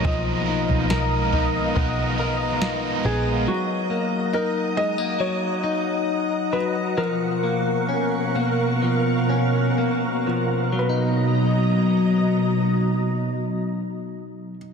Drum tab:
SD |----o-------o---|----------------|----------------|----------------|
FT |o--o--o-o-------|----------------|----------------|----------------|
BD |o-------o-------|----------------|----------------|----------------|